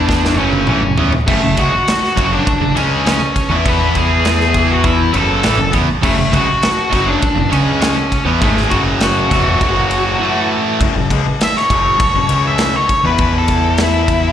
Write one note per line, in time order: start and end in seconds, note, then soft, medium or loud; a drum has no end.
0.00 0.33 E2 medium
0.00 0.37 E3 medium
0.00 0.37 B3 medium
0.00 0.33 D4 medium
0.00 0.37 E4 loud
0.00 0.37 D5 loud
0.09 kick loud
0.09 snare medium
0.25 snare medium
0.36 0.64 F#1 loud
0.36 0.67 F#2 loud
0.36 0.67 C#3 loud
0.36 0.67 F#3 loud
0.36 0.65 C#4 medium
0.36 0.67 C#5 medium
0.53 high tom medium
0.67 0.80 A1 medium
0.67 0.81 A2 medium
0.67 0.82 E3 loud
0.67 1.09 C#4 medium
0.67 1.09 C#5 medium
0.67 mid tom medium
0.81 0.95 F#1 medium
0.81 0.98 F#2 medium
0.81 0.98 C#3 medium
0.96 1.10 E2 medium
0.96 1.12 E3 medium
0.96 1.12 B3 loud
0.96 floor tom loud
1.11 muted fingered electric bass stroke soft
1.11 muted overdriven electric guitar stroke medium
1.11 floor tom medium
1.15 muted distorted electric guitar stroke medium
1.26 1.40 F#1 loud
1.26 1.41 F#2 loud
1.26 1.42 C#3 medium
1.26 1.54 A3 medium
1.26 1.54 A4 medium
1.26 kick loud
1.26 crash loud
1.41 1.55 F#1 medium
1.41 1.57 F#2 medium
1.41 1.57 C#3 medium
1.57 1.69 C#2 loud
1.57 1.71 C#3 medium
1.57 1.71 G#3 loud
1.57 2.28 F#4 medium
1.57 2.28 F#5 medium
1.57 kick medium
1.57 ride medium
1.70 muted fingered electric bass stroke soft
1.70 muted overdriven electric guitar stroke medium
1.70 muted distorted electric guitar stroke medium
1.88 snare loud
1.88 ride loud
2.04 snare soft
2.16 2.44 F#1 medium
2.16 2.45 F#2 medium
2.16 2.45 C#3 medium
2.16 2.45 F#3 loud
2.16 kick medium
2.16 ride medium
2.33 2.73 D4 medium
2.33 2.77 D5 medium
2.46 muted overdriven electric guitar stroke medium
2.46 muted distorted electric guitar stroke medium
2.46 kick loud
2.46 ride medium
2.60 2.74 F#1 medium
2.60 2.76 F#2 medium
2.60 2.74 C#3 medium
2.75 3.17 C#2 medium
2.75 3.19 C#3 loud
2.75 3.19 G#3 loud
2.75 3.19 C#4 loud
2.75 3.04 C#4 medium
2.75 3.04 C#5 medium
2.75 ride medium
3.06 3.47 C#4 medium
3.06 3.48 C#5 loud
3.06 snare loud
3.06 ride medium
3.20 muted fingered electric bass stroke soft
3.20 muted overdriven electric guitar stroke medium
3.20 muted distorted electric guitar stroke medium
3.36 kick medium
3.36 ride medium
3.49 5.09 E2 loud
3.49 5.13 E3 medium
3.49 5.13 B3 loud
3.49 5.14 E4 loud
3.66 3.94 B3 medium
3.66 3.97 B4 loud
3.66 kick loud
3.66 ride loud
3.95 4.66 G#4 medium
3.95 4.72 G#5 medium
3.95 kick medium
3.95 ride medium
4.25 snare loud
4.25 ride loud
4.40 snare soft
4.54 kick medium
4.54 ride medium
4.71 4.84 F#4 medium
4.71 4.86 F#5 loud
4.84 5.12 E4 medium
4.84 5.16 E5 loud
4.84 kick loud
4.84 ride loud
5.13 5.42 F#1 loud
5.13 5.42 F#2 medium
5.13 5.43 C#3 loud
5.13 5.43 F#3 loud
5.13 5.70 A4 medium
5.13 5.71 A5 medium
5.13 ride medium
5.43 5.57 A1 loud
5.43 5.57 A2 medium
5.43 5.57 E3 loud
5.43 snare loud
5.43 ride loud
5.58 5.72 F#1 medium
5.58 5.73 F#2 medium
5.58 5.71 C#3 medium
5.71 5.87 E2 medium
5.71 5.86 E3 medium
5.71 5.86 B3 loud
5.71 kick medium
5.71 ride medium
5.87 muted overdriven electric guitar stroke medium
5.87 muted distorted electric guitar stroke medium
5.87 muted fingered electric bass stroke soft
6.03 6.17 F#1 loud
6.03 6.17 F#2 loud
6.03 6.17 C#3 loud
6.03 6.31 A3 medium
6.03 6.34 A4 loud
6.03 kick loud
6.03 crash loud
6.18 6.32 F#1 medium
6.18 6.33 F#2 medium
6.18 6.31 C#3 medium
6.32 6.47 C#2 loud
6.32 6.47 C#3 medium
6.32 6.47 G#3 medium
6.32 7.05 F#4 medium
6.32 7.10 F#5 loud
6.32 kick medium
6.32 ride medium
6.47 muted overdriven electric guitar stroke medium
6.47 muted distorted electric guitar stroke medium
6.47 muted fingered electric bass stroke soft
6.63 snare loud
6.63 ride loud
6.92 7.20 F#1 medium
6.92 7.21 F#2 medium
6.92 7.21 C#3 loud
6.92 7.22 F#3 loud
6.92 kick medium
6.92 snare soft
6.92 ride medium
7.08 7.50 D4 medium
7.08 7.49 D5 loud
7.21 muted overdriven electric guitar stroke medium
7.21 muted distorted electric guitar stroke medium
7.21 kick loud
7.21 ride loud
7.37 7.51 F#1 medium
7.37 7.52 F#2 medium
7.37 7.49 C#3 medium
7.51 7.94 C#2 loud
7.51 7.95 C#3 medium
7.51 7.96 G#3 loud
7.51 7.96 C#4 loud
7.51 7.81 C#4 medium
7.51 7.80 C#5 medium
7.51 ride medium
7.81 8.24 C#4 medium
7.81 8.23 C#5 loud
7.81 snare loud
7.81 ride loud
7.96 muted overdriven electric guitar stroke medium
7.96 muted fingered electric bass stroke soft
7.96 muted distorted electric guitar stroke medium
8.12 kick medium
8.12 ride medium
8.25 8.40 E2 loud
8.25 8.40 E3 medium
8.25 8.41 B3 loud
8.41 8.69 G#1 loud
8.41 8.70 G#2 loud
8.41 8.71 D#3 loud
8.41 8.71 G#3 loud
8.41 8.52 A3 medium
8.41 8.52 A4 medium
8.41 kick loud
8.41 ride loud
8.57 snare soft
8.70 9.27 F#1 loud
8.70 9.30 F#2 medium
8.70 9.30 C#3 medium
8.70 9.30 F#3 medium
8.70 8.78 F#4 medium
8.70 8.78 F#5 medium
8.70 kick medium
8.70 ride medium
9.00 10.47 F#4 medium
9.00 10.47 F#5 medium
9.00 snare loud
9.00 ride medium
9.31 9.59 E1 medium
9.31 9.60 E2 medium
9.31 9.61 B2 medium
9.31 9.61 E3 loud
9.31 kick medium
9.31 snare soft
9.31 ride medium
9.60 10.16 F#1 medium
9.60 10.20 F#2 medium
9.60 10.20 C#3 loud
9.60 10.21 F#3 loud
9.60 kick loud
9.60 ride medium
9.91 ride medium
10.22 10.80 A2 medium
10.22 10.80 E3 loud
10.22 10.80 A3 loud
10.80 10.94 F#1 loud
10.80 10.95 F#2 loud
10.80 10.95 C#3 loud
10.80 kick loud
10.80 ride loud
10.94 11.08 F#1 medium
10.94 11.11 F#2 medium
10.94 11.10 C#3 medium
11.10 11.24 C#2 loud
11.10 11.24 C#3 medium
11.10 11.25 G#3 medium
11.10 kick medium
11.10 ride medium
11.25 muted fingered electric bass stroke soft
11.25 muted distorted electric guitar stroke medium
11.41 11.56 E5 medium
11.41 snare loud
11.41 ride loud
11.57 12.43 C#5 loud
11.57 snare soft
11.70 11.97 F#1 loud
11.70 11.99 F#2 medium
11.70 11.99 C#3 loud
11.70 11.99 F#3 loud
11.70 kick medium
11.70 ride medium
11.99 muted fingered electric bass stroke soft
11.99 muted distorted electric guitar stroke medium
11.99 kick loud
11.99 ride loud
12.14 12.28 F#1 medium
12.14 12.30 F#2 medium
12.14 12.28 C#3 medium
12.29 12.70 C#2 loud
12.29 12.73 C#3 loud
12.29 12.73 G#3 loud
12.29 12.73 C#4 loud
12.29 ride medium
12.47 12.74 E5 medium
12.58 snare loud
12.58 ride loud
12.73 13.04 C#5 medium
12.73 muted fingered electric bass stroke soft
12.73 muted distorted electric guitar stroke medium
12.89 kick medium
12.89 ride medium
13.03 14.32 E2 loud
13.03 14.32 E3 loud
13.03 14.32 B3 loud
13.03 14.32 E4 loud
13.03 13.34 B4 medium
13.18 kick loud
13.18 ride loud
13.38 13.79 A4 medium
13.48 kick medium
13.48 ride medium
13.78 14.32 E4 loud
13.78 snare loud
13.78 ride loud
14.08 kick medium
14.08 ride medium